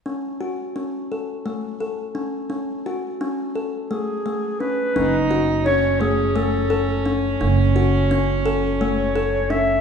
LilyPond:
<<
  \new Staff \with { instrumentName = "Clarinet" } { \time 7/8 \key fis \dorian \tempo 4 = 86 r2. r8 | r2 gis'4 b'8~ | b'8 r8 cis''8 gis'8 a'4 r8 | r2 cis''4 e''8 | }
  \new Staff \with { instrumentName = "Cello" } { \time 7/8 \key fis \dorian r2. r8 | r2. r8 | dis'4 cis'2~ cis'8~ | cis'2.~ cis'8 | }
  \new Staff \with { instrumentName = "Kalimba" } { \time 7/8 \key fis \dorian cis'8 fis'8 cis'8 a'8 a8 a'8 cis'8 | cis'8 fis'8 cis'8 a'8 a8 a8 cis'8 | cis'8 fis'8 cis'8 a8 a8 a'8 cis'8 | cis'8 fis'8 cis'8 a'8 a8 a'8 cis'8 | }
  \new Staff \with { instrumentName = "Upright bass" } { \clef bass \time 7/8 \key fis \dorian r2. r8 | r2. r8 | fis,,2.~ fis,,8 | fis,,2.~ fis,,8 | }
>>